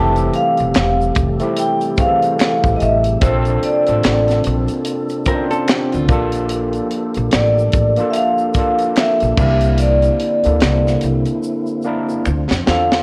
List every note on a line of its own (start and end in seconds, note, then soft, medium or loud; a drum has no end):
0.00 0.28 F1 loud
0.00 3.18 C3 medium
0.00 1.15 E3 medium
0.00 3.18 G3 medium
0.00 1.14 A3 loud
0.00 1.15 C4 medium
0.00 1.16 G4 loud
0.00 3.18 G4 medium
0.00 9.34 A4 medium
0.00 0.32 A5 loud
0.16 closed hi-hat soft
0.16 shaker medium
0.34 1.13 F5 medium
0.34 closed hi-hat medium
0.57 0.73 E1 medium
0.57 closed hi-hat soft
0.57 shaker soft
0.74 1.10 E1 medium
0.74 finger snap medium
0.74 snare loud
0.74 closed hi-hat medium
0.74 shaker medium
1.01 shaker medium
1.15 1.37 F1 medium
1.15 kick medium
1.15 closed hi-hat medium
1.15 shaker soft
1.40 1.90 A3 medium
1.40 1.91 C4 medium
1.40 1.91 E4 medium
1.40 1.92 G4 medium
1.40 closed hi-hat soft
1.40 shaker soft
1.57 2.00 G5 loud
1.57 closed hi-hat medium
1.57 shaker medium
1.81 closed hi-hat soft
1.81 shaker soft
1.97 3.07 E3 medium
1.97 3.06 A3 medium
1.97 3.06 C4 medium
1.97 2.78 F5 loud
1.97 kick medium
1.97 closed hi-hat medium
1.97 shaker soft
2.01 2.07 G#4 medium
2.07 3.11 A4 medium
2.22 closed hi-hat soft
2.22 shaker medium
2.39 finger snap medium
2.39 snare loud
2.39 closed hi-hat medium
2.39 shaker medium
2.42 finger snap medium
2.64 2.78 A1 medium
2.64 kick medium
2.64 shaker soft
2.76 2.81 D#5 medium
2.76 closed hi-hat medium
2.81 3.16 A1 loud
2.81 3.24 E5 medium
2.81 shaker soft
3.04 closed hi-hat medium
3.04 shaker soft
3.21 3.57 A#1 loud
3.21 6.06 C3 medium
3.21 12.21 A#3 medium
3.21 3.75 C4 loud
3.21 6.06 D4 medium
3.21 3.76 D4 loud
3.21 3.76 F4 medium
3.21 3.77 A4 loud
3.21 3.65 C5 medium
3.21 kick loud
3.21 closed hi-hat medium
3.21 shaker medium
3.45 closed hi-hat soft
3.45 shaker soft
3.63 4.42 D5 medium
3.63 closed hi-hat medium
3.87 4.02 A1 medium
3.87 5.08 C4 medium
3.87 5.09 D4 medium
3.87 5.09 F4 medium
3.87 5.10 A4 medium
3.87 closed hi-hat soft
3.87 shaker soft
4.03 4.39 A1 medium
4.03 finger snap medium
4.03 snare loud
4.03 closed hi-hat medium
4.03 shaker medium
4.28 snare soft
4.28 closed hi-hat soft
4.28 shaker medium
4.44 4.66 A#1 loud
4.44 closed hi-hat medium
4.44 shaker medium
4.68 closed hi-hat soft
4.68 shaker soft
4.85 closed hi-hat medium
4.85 shaker medium
5.09 closed hi-hat soft
5.09 shaker soft
5.25 5.99 C4 medium
5.25 5.35 C#4 medium
5.25 6.00 F4 medium
5.25 5.50 A#4 medium
5.25 kick medium
5.25 closed hi-hat medium
5.25 shaker soft
5.30 6.01 C5 medium
5.35 6.03 D4 medium
5.51 5.68 A4 medium
5.51 closed hi-hat soft
5.51 shaker soft
5.68 5.92 G4 medium
5.68 finger snap medium
5.68 snare loud
5.68 closed hi-hat medium
5.68 shaker medium
5.70 finger snap medium
5.92 6.10 D2 medium
5.92 6.31 F4 medium
5.92 closed hi-hat soft
5.92 shaker soft
6.09 6.79 A#1 loud
6.09 9.34 F3 medium
6.09 7.51 A#3 medium
6.09 7.52 D4 medium
6.09 7.52 F4 medium
6.09 9.35 G4 medium
6.09 7.53 A4 loud
6.09 kick loud
6.09 closed hi-hat medium
6.09 shaker soft
6.32 closed hi-hat medium
6.32 shaker soft
6.49 closed hi-hat medium
6.49 shaker medium
6.73 closed hi-hat soft
6.73 shaker medium
6.91 closed hi-hat medium
7.14 7.30 A#1 loud
7.14 closed hi-hat soft
7.14 shaker soft
7.31 7.68 A1 medium
7.31 8.12 D5 medium
7.31 finger snap medium
7.31 snare loud
7.31 closed hi-hat medium
7.31 shaker medium
7.59 shaker medium
7.72 7.95 A1 medium
7.72 kick loud
7.72 closed hi-hat medium
7.72 shaker soft
7.97 8.48 A#3 medium
7.97 8.48 D4 medium
7.97 8.49 F4 medium
7.97 closed hi-hat soft
7.97 shaker soft
8.01 8.49 A4 medium
8.11 8.15 E5 medium
8.11 closed hi-hat medium
8.15 9.00 F5 loud
8.15 shaker medium
8.38 shaker soft
8.54 9.36 A#3 medium
8.54 9.37 D4 medium
8.54 9.39 F4 medium
8.54 kick medium
8.54 closed hi-hat medium
8.54 shaker soft
8.59 9.40 A4 medium
8.79 closed hi-hat soft
8.79 shaker medium
8.96 9.76 E5 medium
8.96 finger snap medium
8.96 snare loud
8.96 closed hi-hat medium
8.96 shaker medium
9.20 9.36 A#1 medium
9.20 closed hi-hat soft
9.20 shaker soft
9.37 10.07 C2 loud
9.37 12.22 D3 medium
9.37 10.25 A#3 medium
9.37 13.03 C4 medium
9.37 10.26 D4 medium
9.37 12.22 E4 medium
9.37 10.27 E4 medium
9.37 10.27 G4 medium
9.37 kick loud
9.37 crash medium
9.37 shaker soft
9.61 closed hi-hat medium
9.61 shaker soft
9.78 10.99 D5 medium
9.78 closed hi-hat medium
9.78 shaker medium
10.02 closed hi-hat soft
10.02 shaker medium
10.20 closed hi-hat medium
10.44 10.59 D2 loud
10.44 11.66 A#3 medium
10.44 11.66 D4 medium
10.44 11.67 E4 medium
10.44 closed hi-hat soft
10.44 shaker soft
10.48 11.67 A4 medium
10.60 10.97 C2 medium
10.60 finger snap medium
10.60 finger snap loud
10.60 snare loud
10.60 closed hi-hat medium
10.60 shaker medium
10.87 snare soft
10.87 shaker medium
11.01 11.23 C2 medium
11.01 closed hi-hat medium
11.01 shaker soft
11.25 closed hi-hat soft
11.25 shaker soft
11.43 shaker medium
11.67 shaker soft
11.83 12.25 A#3 medium
11.83 12.26 D4 medium
11.83 shaker soft
11.87 12.27 E4 medium
11.87 12.27 A#4 medium
12.09 shaker soft
12.25 12.47 D2 medium
12.25 13.03 D3 medium
12.25 13.03 D4 medium
12.25 13.03 F4 medium
12.25 finger snap medium
12.25 shaker medium
12.51 12.65 F2 medium
12.51 snare medium
12.51 shaker soft
12.66 13.02 E2 loud
12.66 13.02 C4 medium
12.66 13.03 D4 medium
12.66 13.03 F4 medium
12.66 13.03 A4 medium
12.66 13.03 F5 loud
12.66 snare loud
12.66 shaker soft
12.92 snare medium
12.92 shaker soft